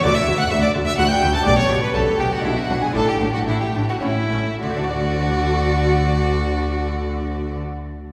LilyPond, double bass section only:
\new Staff \with { instrumentName = "Double bass section" } { \clef bass \time 3/4 \key d \major \tempo 4 = 109 d,8 d,8 d,8 d,8 d,8 d,8 | b,,8 b,,8 b,,8 b,,8 b,,8 b,,8 | a,,8 a,,8 a,,8 a,,8 a,,8 a,,8 | d,2.~ |
d,2. | }